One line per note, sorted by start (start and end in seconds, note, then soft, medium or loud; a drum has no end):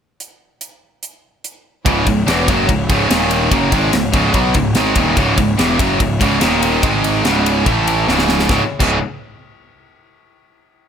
0.20 closed hi-hat medium
0.61 closed hi-hat medium
1.03 closed hi-hat medium
1.44 closed hi-hat medium
1.85 2.05 C#1 loud
1.85 2.05 C#2 medium
1.85 2.05 G#2 loud
1.85 2.06 C#3 loud
1.85 3.09 G#3 medium
1.85 3.09 E4 medium
1.85 3.09 C#5 medium
1.85 kick loud
1.85 ride loud
2.06 2.26 C#1 medium
2.06 2.23 C#2 medium
2.06 2.23 G#2 medium
2.06 kick medium
2.06 ride medium
2.26 2.46 E1 loud
2.26 2.47 E2 loud
2.26 2.47 B2 loud
2.26 2.47 E3 loud
2.26 snare loud
2.26 ride loud
2.48 2.67 F#1 loud
2.48 2.68 F#2 loud
2.48 2.68 C#3 medium
2.48 2.69 F#3 loud
2.48 kick loud
2.48 ride medium
2.69 2.88 C#1 medium
2.69 2.85 C#2 medium
2.69 2.86 G#2 medium
2.69 kick medium
2.69 ride medium
2.89 3.09 C#1 loud
2.89 3.10 C#2 medium
2.89 3.10 G#2 medium
2.89 3.10 C#3 medium
2.89 kick loud
2.89 ride medium
3.10 3.49 D#1 loud
3.10 3.50 D#2 loud
3.10 3.51 A#2 loud
3.10 3.51 D#3 loud
3.10 3.51 A#3 medium
3.10 3.51 D#4 medium
3.10 3.51 D#5 medium
3.10 snare loud
3.10 ride loud
3.31 ride medium
3.50 3.70 F#1 loud
3.50 3.71 F#2 medium
3.50 3.71 C#3 loud
3.50 3.72 F#3 loud
3.50 6.38 G#3 medium
3.50 6.38 E4 medium
3.50 6.38 C#5 medium
3.50 kick loud
3.50 ride loud
3.71 3.91 G#1 loud
3.71 3.91 G#2 medium
3.71 3.92 D#3 loud
3.71 3.92 G#3 loud
3.71 kick loud
3.71 ride medium
3.92 4.12 C#1 medium
3.92 4.09 C#2 medium
3.92 4.09 G#2 medium
3.92 snare loud
3.92 ride loud
4.12 4.33 C#1 loud
4.12 4.33 C#2 medium
4.12 4.33 G#2 loud
4.12 4.34 C#3 loud
4.12 kick loud
4.12 ride medium
4.33 4.54 B1 loud
4.33 4.54 B2 medium
4.33 4.54 F#3 loud
4.33 4.54 B3 loud
4.33 kick loud
4.33 ride medium
4.54 4.74 C#1 medium
4.54 4.72 C#2 medium
4.54 4.72 G#2 medium
4.54 kick loud
4.54 ride medium
4.75 4.95 G#1 loud
4.75 4.96 G#2 loud
4.75 4.96 D#3 loud
4.75 4.96 G#3 loud
4.75 snare loud
4.75 ride loud
4.95 5.15 D#1 loud
4.95 5.16 D#2 loud
4.95 5.17 A#2 loud
4.95 5.17 D#3 loud
4.95 kick loud
4.95 ride medium
5.17 5.36 C#1 loud
5.17 5.36 C#2 loud
5.17 5.37 G#2 loud
5.17 5.38 C#3 loud
5.17 kick loud
5.17 ride medium
5.37 5.57 C#1 medium
5.37 5.54 C#2 medium
5.37 5.54 G#2 medium
5.37 kick loud
5.37 ride medium
5.57 5.78 E1 loud
5.57 5.78 E2 medium
5.57 5.78 B2 loud
5.57 5.78 E3 loud
5.57 snare loud
5.57 ride medium
5.78 5.99 F#1 medium
5.78 5.99 F#2 medium
5.78 5.99 C#3 loud
5.78 6.00 F#3 loud
5.78 kick loud
5.78 ride medium
5.99 6.19 C#1 medium
5.99 6.16 C#2 medium
5.99 6.16 G#2 medium
5.99 kick medium
5.99 ride loud
6.19 6.40 C#1 medium
6.19 6.40 C#2 medium
6.19 6.40 G#2 medium
6.19 6.41 C#3 loud
6.19 kick loud
6.19 ride medium
6.41 6.80 D#1 loud
6.41 6.82 D#2 loud
6.41 6.82 A#2 loud
6.41 6.82 D#3 loud
6.41 6.82 A#3 medium
6.41 7.23 D#4 medium
6.41 7.23 D#5 medium
6.41 snare loud
6.41 ride loud
6.63 ride medium
6.83 7.22 G#1 loud
6.83 7.24 G#2 loud
6.83 7.24 D#3 loud
6.83 7.24 G#3 loud
6.83 7.66 G#3 medium
6.83 kick loud
6.83 ride loud
7.04 ride medium
7.24 7.63 C#1 loud
7.24 7.65 C#2 medium
7.24 7.65 G#2 loud
7.24 7.66 C#3 loud
7.24 8.07 E4 medium
7.24 7.66 C#5 medium
7.24 snare loud
7.24 ride medium
7.46 ride medium
7.65 8.05 A1 medium
7.65 8.06 A2 medium
7.65 8.07 E3 loud
7.65 8.07 A3 medium
7.65 8.07 A3 loud
7.65 8.07 E5 medium
7.65 kick medium
7.65 ride medium
7.87 ride medium
8.08 8.46 C#1 medium
8.08 8.48 C#2 loud
8.08 8.49 G#2 loud
8.08 8.49 C#3 loud
8.08 8.49 G#3 medium
8.08 8.49 E4 medium
8.08 8.49 C#5 medium
8.08 snare medium
8.19 snare medium
8.29 snare loud
8.39 snare loud
8.49 8.61 C#1 loud
8.49 8.61 C#2 loud
8.49 8.62 G#2 loud
8.49 8.62 C#3 loud
8.49 8.70 G#3 medium
8.49 8.70 E4 medium
8.49 8.70 C#5 medium
8.49 kick medium
8.49 snare medium
8.80 9.00 C#1 loud
8.80 8.96 C#2 loud
8.80 8.97 G#2 loud
8.80 8.97 C#3 loud
8.80 kick medium
8.80 crash medium